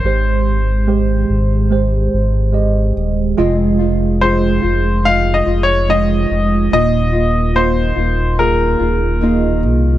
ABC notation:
X:1
M:4/4
L:1/8
Q:1/4=72
K:Fm
V:1 name="Grand piano"
c6- c z | z2 c2 (3f e d e2 | e2 c2 B3 z |]
V:2 name="Tine electric piano"
[A,Gc]2 [A,Gc]2 [A,Gc]2 [A,Ge]2 | [A,Fe]2 [A,FA]2 [A,Fe]2 [A,Fe]2 | [B,Fe]2 [B,Fe]2 [B,FA]2 [B,Fe]2 |]
V:3 name="Tine electric piano" clef=bass
[A,,E,]3 z4 z | C,3 z4 z | B,,3 z4 z |]
V:4 name="Nylon-string guitar"
z8 | [F,,C,E,A,CF] [E,A,CF] [F,,C,E,A,CF] [E,A,CF] [E,A,CF] [E,A,CF] [F,,C,E,A,CF]2 | [E,B,EF] [B,EF] [E,B,EF] [B,EF] [E,B,EF] [B,EF] [E,B,EF]2 |]
V:5 name="Sub bass" clef=bass
A,,,3 A,,,2 A,,,2 E,,, | F,,,3 F,,,2 F,,,2 F,,, | E,,,3 E,,,2 E,,,2 C,, |]